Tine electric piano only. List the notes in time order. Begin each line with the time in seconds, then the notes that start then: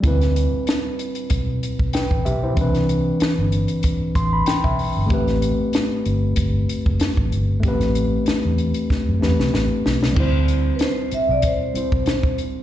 0.00 G3 C4
0.05 E4 B4
1.94 B4 G5
2.25 G4 E5
2.44 E4 C5
2.53 E3 C4
2.58 D4 B4
4.16 C6
4.33 B5
4.47 G5
4.64 E5
5.06 A3 C4
5.11 G4 B4
7.60 A3 C4
7.65 G4 B4
9.20 A3 C4 G4 B4
10.13 G3 C4
10.18 E4 C5
11.74 G3 C4 E4 C5